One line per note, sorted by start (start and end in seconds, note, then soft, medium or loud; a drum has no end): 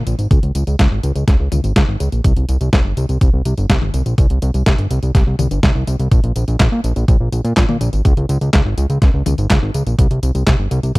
0.07 0.15 A#1 medium
0.07 closed hi-hat medium
0.07 tambourine medium
0.19 0.28 G#1 medium
0.19 closed hi-hat medium
0.19 tambourine soft
0.31 0.40 C#2 loud
0.31 kick loud
0.31 closed hi-hat medium
0.31 tambourine soft
0.43 0.52 C#2 medium
0.43 closed hi-hat soft
0.55 0.64 C#2 loud
0.55 closed hi-hat medium
0.55 tambourine medium
0.67 0.76 C#2 medium
0.67 closed hi-hat medium
0.67 tambourine soft
0.79 0.88 C#2 loud
0.79 kick loud
0.79 snare loud
0.79 closed hi-hat medium
0.79 tambourine soft
0.91 1.00 G#1 medium
1.03 1.12 C#2 medium
1.03 closed hi-hat medium
1.03 tambourine medium
1.16 1.24 C#2 medium
1.16 closed hi-hat medium
1.16 tambourine soft
1.28 1.36 C#2 loud
1.28 kick loud
1.28 snare medium
1.28 closed hi-hat medium
1.28 tambourine soft
1.40 1.48 C#2 medium
1.52 1.61 C#2 loud
1.52 closed hi-hat medium
1.52 high tom medium
1.52 tambourine medium
1.64 1.73 G#1 medium
1.64 closed hi-hat medium
1.64 tambourine soft
1.76 1.85 C#2 loud
1.76 kick loud
1.76 snare loud
1.76 closed hi-hat medium
1.76 tambourine soft
1.88 1.97 G#1 medium
2.00 2.09 C#2 loud
2.00 closed hi-hat medium
2.00 tambourine medium
2.12 2.21 A#1 medium
2.12 closed hi-hat medium
2.12 tambourine soft
2.24 2.33 C2 loud
2.24 kick loud
2.24 closed hi-hat medium
2.24 tambourine soft
2.37 2.45 C2 medium
2.37 closed hi-hat soft
2.49 2.57 C2 loud
2.49 closed hi-hat medium
2.49 tambourine medium
2.61 2.69 C2 medium
2.61 closed hi-hat soft
2.61 tambourine soft
2.73 2.82 C2 loud
2.73 kick loud
2.73 snare loud
2.73 closed hi-hat medium
2.73 tambourine soft
2.85 2.94 G1 medium
2.97 3.06 C2 loud
2.97 closed hi-hat medium
2.97 tambourine medium
3.09 3.18 C2 medium
3.09 closed hi-hat soft
3.09 tambourine soft
3.21 3.30 C2 loud
3.21 kick loud
3.21 closed hi-hat medium
3.21 tambourine soft
3.33 3.42 C2 medium
3.45 3.54 C2 medium
3.45 closed hi-hat medium
3.45 tambourine medium
3.58 3.66 G1 medium
3.58 closed hi-hat soft
3.58 tambourine soft
3.70 3.78 C2 loud
3.70 kick loud
3.70 snare loud
3.70 closed hi-hat medium
3.70 tambourine soft
3.82 3.90 G1 medium
3.82 high tom medium
3.94 4.03 C2 medium
3.94 closed hi-hat medium
3.94 tambourine medium
4.06 4.15 A#1 medium
4.06 closed hi-hat soft
4.06 tambourine soft
4.18 4.27 C2 loud
4.18 kick loud
4.18 closed hi-hat medium
4.18 tambourine soft
4.30 4.39 C2 medium
4.30 closed hi-hat soft
4.42 4.51 C2 medium
4.42 closed hi-hat medium
4.42 tambourine medium
4.54 4.63 C2 medium
4.54 closed hi-hat medium
4.54 tambourine soft
4.66 4.75 C2 loud
4.66 kick loud
4.66 snare loud
4.66 closed hi-hat medium
4.66 tambourine soft
4.78 4.87 G1 medium
4.78 closed hi-hat soft
4.91 4.99 C2 loud
4.91 closed hi-hat medium
4.91 tambourine medium
5.03 5.11 C2 medium
5.03 closed hi-hat soft
5.03 tambourine soft
5.15 5.24 C2 loud
5.15 kick loud
5.15 snare medium
5.15 closed hi-hat medium
5.15 tambourine soft
5.27 5.36 C2 medium
5.39 5.48 C2 loud
5.39 closed hi-hat medium
5.39 high tom medium
5.39 tambourine medium
5.51 5.60 G1 medium
5.51 closed hi-hat soft
5.51 tambourine soft
5.63 5.72 C2 loud
5.63 kick loud
5.63 snare loud
5.63 closed hi-hat medium
5.63 tambourine soft
5.75 5.84 C2 medium
5.87 5.96 C2 medium
5.87 closed hi-hat medium
5.87 tambourine medium
6.00 6.08 C2 medium
6.00 closed hi-hat soft
6.00 tambourine soft
6.12 6.20 A#1 loud
6.12 kick loud
6.12 closed hi-hat medium
6.12 tambourine soft
6.24 6.32 A#1 medium
6.24 closed hi-hat soft
6.36 6.45 A#1 loud
6.36 closed hi-hat medium
6.36 tambourine medium
6.48 6.57 A#1 medium
6.48 closed hi-hat medium
6.48 tambourine soft
6.60 6.69 A#1 loud
6.60 kick loud
6.60 snare loud
6.60 clap medium
6.60 closed hi-hat medium
6.60 tambourine soft
6.72 6.81 A#2 medium
6.84 6.93 A#1 loud
6.84 closed hi-hat medium
6.84 tambourine medium
6.96 7.05 A#1 medium
6.96 closed hi-hat soft
6.96 tambourine soft
7.08 7.17 A#1 loud
7.08 kick loud
7.08 closed hi-hat medium
7.08 tambourine soft
7.20 7.29 A#1 medium
7.32 7.41 A#1 medium
7.32 closed hi-hat medium
7.32 tambourine medium
7.45 7.53 A#2 medium
7.45 closed hi-hat soft
7.45 tambourine soft
7.57 7.65 A#1 loud
7.57 kick loud
7.57 snare loud
7.57 clap medium
7.57 closed hi-hat medium
7.57 tambourine soft
7.69 7.77 A#2 medium
7.69 high tom medium
7.81 7.90 A#1 loud
7.81 closed hi-hat medium
7.81 tambourine medium
7.93 8.02 G#1 medium
7.93 closed hi-hat soft
7.93 tambourine soft
8.05 8.14 C#2 loud
8.05 kick loud
8.05 closed hi-hat medium
8.05 tambourine soft
8.17 8.26 C#2 medium
8.17 closed hi-hat soft
8.29 8.38 C#2 loud
8.29 closed hi-hat medium
8.29 tambourine medium
8.41 8.50 C#2 medium
8.41 closed hi-hat medium
8.41 tambourine soft
8.53 8.62 C#2 loud
8.53 kick loud
8.53 snare loud
8.53 clap medium
8.53 closed hi-hat medium
8.53 tambourine soft
8.66 8.74 G#1 medium
8.78 8.86 C#2 loud
8.78 closed hi-hat medium
8.78 tambourine medium
8.90 8.98 C#2 medium
8.90 closed hi-hat soft
8.90 tambourine soft
9.02 9.11 C#2 loud
9.02 kick loud
9.02 snare medium
9.02 closed hi-hat medium
9.02 tambourine soft
9.14 9.23 C#2 medium
9.26 9.35 C#2 medium
9.26 closed hi-hat medium
9.26 high tom medium
9.26 tambourine medium
9.38 9.47 G#1 medium
9.38 closed hi-hat soft
9.38 tambourine soft
9.50 9.59 C#2 loud
9.50 kick loud
9.50 snare loud
9.50 clap medium
9.50 closed hi-hat medium
9.50 tambourine soft
9.62 9.71 G#1 medium
9.74 9.83 C#2 medium
9.74 closed hi-hat medium
9.74 tambourine medium
9.86 9.95 A#1 medium
9.86 closed hi-hat medium
9.86 tambourine soft
9.99 10.07 C2 loud
9.99 kick loud
9.99 closed hi-hat medium
9.99 tambourine soft
10.11 10.19 C2 medium
10.11 closed hi-hat soft
10.23 10.32 C2 loud
10.23 closed hi-hat medium
10.23 tambourine medium
10.35 10.44 C2 medium
10.35 closed hi-hat medium
10.35 tambourine soft
10.47 10.56 C2 loud
10.47 kick loud
10.47 snare loud
10.47 clap medium
10.47 closed hi-hat medium
10.47 tambourine soft
10.59 10.68 G1 medium
10.71 10.80 C2 loud
10.71 closed hi-hat medium
10.71 tambourine medium
10.83 10.92 C2 medium
10.83 closed hi-hat medium
10.83 tambourine soft
10.95 10.99 C2 loud
10.95 kick loud
10.95 closed hi-hat medium
10.95 tambourine soft